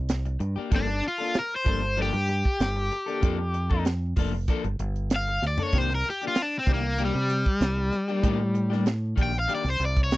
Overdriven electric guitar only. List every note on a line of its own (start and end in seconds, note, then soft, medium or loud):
0.76 1.04 D4 medium
1.08 1.36 F4 medium
1.39 1.53 A#4 medium
1.56 1.98 C5 medium
2.02 3.84 G4 loud
5.16 5.44 F5 medium
5.47 5.63 D5 medium
5.63 5.78 C#5 medium
5.78 5.92 C5 medium
5.95 6.07 A#4 medium
6.10 6.23 G4 medium
6.28 6.42 F4 medium
6.42 6.55 D4 medium
6.59 6.70 C4 medium
6.74 7.01 A#3 medium
7.05 8.86 G3 medium
9.23 9.36 G5 medium
9.39 9.51 F5 medium
9.55 9.68 D5 medium
9.70 9.82 C5 loud
9.85 9.99 D5 medium
10.04 10.17 C#5 medium